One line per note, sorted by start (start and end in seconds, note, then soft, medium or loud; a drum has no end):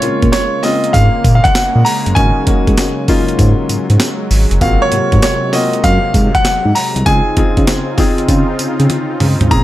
0.00 0.10 A#2 soft
0.00 4.57 C#3 medium
0.00 0.02 G#3 medium
0.00 7.02 G#3 medium
0.00 0.53 G#3 medium
0.00 2.14 A#3 medium
0.00 0.54 A#3 medium
0.00 0.64 C4 medium
0.00 0.03 C#4 medium
0.00 0.54 C#4 medium
0.00 0.03 F4 medium
0.00 0.54 F4 medium
0.00 0.30 C#5 medium
0.00 closed hi-hat medium
0.22 0.30 A#2 loud
0.22 kick loud
0.22 closed hi-hat medium
0.32 0.61 C#5 medium
0.32 snare loud
0.32 clap loud
0.32 closed hi-hat medium
0.32 tambourine medium
0.63 1.56 G#3 medium
0.63 1.56 C4 medium
0.63 1.56 C#4 medium
0.63 1.57 F4 medium
0.63 0.91 D#5 medium
0.63 snare medium
0.63 open hi-hat medium
0.63 tambourine medium
0.84 closed hi-hat soft
0.93 1.09 G#2 loud
0.93 1.32 F5 loud
0.93 kick medium
0.93 closed hi-hat medium
0.93 tambourine medium
1.24 1.40 A#2 loud
1.24 kick medium
1.24 closed hi-hat medium
1.24 tambourine medium
1.35 1.45 F5 medium
1.44 1.86 F#5 loud
1.44 kick loud
1.44 closed hi-hat medium
1.55 snare loud
1.55 clap medium
1.55 closed hi-hat medium
1.55 tambourine loud
1.76 1.83 A#2 loud
1.85 2.14 A#5 loud
1.85 open hi-hat medium
1.85 tambourine medium
2.06 2.14 F#1 medium
2.06 closed hi-hat medium
2.15 2.32 G#1 loud
2.15 7.02 F#3 medium
2.15 2.42 A#3 medium
2.15 2.42 C#4 medium
2.15 2.42 D#4 medium
2.15 2.43 F#4 medium
2.15 3.95 G#5 loud
2.15 kick loud
2.15 closed hi-hat medium
2.15 tambourine medium
2.47 2.55 G#2 soft
2.47 2.98 A#3 medium
2.47 2.98 C#4 medium
2.47 2.99 D#4 medium
2.47 2.99 F#4 medium
2.47 kick loud
2.47 closed hi-hat medium
2.67 2.75 G#2 loud
2.67 kick loud
2.67 closed hi-hat medium
2.77 snare loud
2.77 clap loud
2.77 closed hi-hat medium
2.77 tambourine loud
3.08 4.01 A#3 medium
3.08 4.01 C#4 medium
3.08 4.01 D#4 medium
3.08 4.01 F4 loud
3.08 kick medium
3.08 open hi-hat medium
3.08 tambourine medium
3.28 closed hi-hat medium
3.39 3.54 G#2 loud
3.39 kick medium
3.39 closed hi-hat medium
3.39 tambourine medium
3.69 3.78 G#2 soft
3.69 closed hi-hat medium
3.69 tambourine medium
3.90 3.97 G#2 loud
3.90 closed hi-hat medium
4.00 snare loud
4.00 clap medium
4.00 closed hi-hat medium
4.00 tambourine loud
4.31 4.46 G#1 medium
4.31 open hi-hat medium
4.31 tambourine medium
4.51 4.59 F#1 medium
4.51 closed hi-hat medium
4.61 4.76 G#1 loud
4.61 7.04 C3 medium
4.61 4.87 A#3 medium
4.61 4.87 C4 medium
4.61 4.87 F4 medium
4.61 4.87 F#4 medium
4.61 4.82 F5 medium
4.61 kick loud
4.61 closed hi-hat medium
4.61 tambourine medium
4.82 5.20 C#5 loud
4.92 5.00 G#2 medium
4.92 5.43 C3 medium
4.92 5.43 A#3 medium
4.92 5.44 F4 medium
4.92 5.44 F#4 medium
4.92 closed hi-hat medium
5.12 5.20 G#2 loud
5.12 kick loud
5.12 closed hi-hat soft
5.22 5.54 C#5 medium
5.22 snare loud
5.22 clap loud
5.22 closed hi-hat medium
5.22 tambourine medium
5.53 6.46 A#3 medium
5.53 6.46 C4 medium
5.53 6.46 F4 medium
5.53 6.46 F#4 medium
5.53 5.85 D#5 medium
5.53 snare medium
5.53 open hi-hat medium
5.53 tambourine medium
5.73 closed hi-hat soft
5.84 5.99 F#2 loud
5.84 6.31 F5 loud
5.84 kick medium
5.84 closed hi-hat medium
5.84 tambourine medium
6.14 6.29 G#2 loud
6.14 kick loud
6.14 closed hi-hat medium
6.14 tambourine medium
6.35 6.77 F#5 loud
6.35 kick loud
6.35 closed hi-hat medium
6.45 snare loud
6.45 clap medium
6.45 closed hi-hat medium
6.45 tambourine loud
6.65 6.73 G#2 loud
6.75 7.07 A#5 loud
6.75 open hi-hat medium
6.75 tambourine medium
6.96 7.04 C2 medium
6.96 closed hi-hat medium
7.06 7.21 C#2 loud
7.06 9.64 C#3 medium
7.06 9.48 C4 medium
7.06 7.32 C4 medium
7.06 9.49 D#4 medium
7.06 7.32 D#4 medium
7.06 9.49 F4 medium
7.06 7.32 F4 medium
7.06 7.32 G#4 medium
7.06 8.86 G#5 loud
7.06 kick loud
7.06 closed hi-hat medium
7.06 tambourine medium
7.37 7.45 C#3 soft
7.37 7.88 C4 medium
7.37 7.88 D#4 medium
7.37 7.89 F4 medium
7.37 7.89 G#4 medium
7.37 kick loud
7.37 closed hi-hat medium
7.57 7.65 C#3 medium
7.57 kick loud
7.57 closed hi-hat medium
7.67 snare loud
7.67 clap loud
7.67 closed hi-hat medium
7.67 tambourine loud
7.98 8.91 C4 medium
7.98 8.91 D#4 medium
7.98 8.91 F4 medium
7.98 8.91 G#4 medium
7.98 kick loud
7.98 snare medium
7.98 open hi-hat medium
7.98 tambourine medium
8.18 closed hi-hat soft
8.29 8.44 C#3 loud
8.29 kick medium
8.29 closed hi-hat medium
8.29 tambourine medium
8.59 8.67 C#3 soft
8.59 closed hi-hat medium
8.59 tambourine medium
8.80 8.87 C#3 loud
8.80 closed hi-hat medium
8.90 closed hi-hat medium
8.90 high tom medium
9.20 9.36 C#2 loud
9.20 mid tom loud
9.20 open hi-hat medium
9.41 9.48 G#1 medium
9.41 closed hi-hat medium
9.41 floor tom loud
9.51 9.64 A#1 loud
9.51 9.64 G#3 medium
9.51 9.64 A#3 medium
9.51 9.64 C4 medium
9.51 9.64 C#4 medium
9.51 9.64 F4 medium
9.51 9.64 G#4 medium
9.51 9.64 A#5 loud
9.51 kick loud
9.51 closed hi-hat medium
9.51 tambourine medium